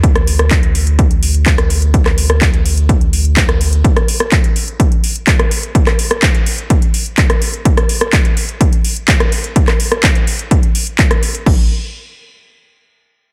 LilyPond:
<<
  \new Staff \with { instrumentName = "Sub bass" } { \clef bass \time 4/4 \key d \lydian \tempo 4 = 126 d,1~ | d,1 | r1 | r1 |
r1 | r1 | a,,8 r2. r8 | }
  \new DrumStaff \with { instrumentName = "Drums" } \drummode { \time 4/4 <hh bd>16 <hh ss>16 hho16 <hh ss>16 <hc hh bd>16 hh16 hho16 hh16 <hh bd>16 hh16 hho16 hh16 <hc hh bd>16 <hh ss>16 hho16 hh16 | <hh bd>16 <hc hh ss>16 hho16 <hh ss>16 <hc hh bd>16 hh16 hho16 hh16 <hh bd>16 hh16 hho16 hh16 <hc hh bd>16 <hh ss>16 hho16 hh16 | <hh bd>16 <hh ss>16 hho16 ss16 <hc hh bd>16 hh16 hho16 hh16 <hh bd>16 hh16 hho16 hh16 <hc hh bd>16 <hh ss>16 hho16 hh16 | <hh bd>16 <hc hh ss>16 hho16 <hh ss>16 <hc hh bd>16 hh16 hho16 hh16 <hh bd>16 hh16 hho16 hh16 <hc hh bd>16 <hh ss>16 hho16 hh16 |
<hh bd>16 <hh ss>16 hho16 <hh ss>16 <hc hh bd>16 hh16 hho16 hh16 <hh bd>16 hh16 hho16 hh16 <hc hh bd>16 <hh ss>16 hho16 hh16 | <hh bd>16 <hc hh ss>16 hho16 <hh ss>16 <hc hh bd>16 hh16 hho16 hh16 <hh bd>16 hh16 hho16 hh16 <hc hh bd>16 <hh ss>16 hho16 hh16 | <cymc bd>4 r4 r4 r4 | }
>>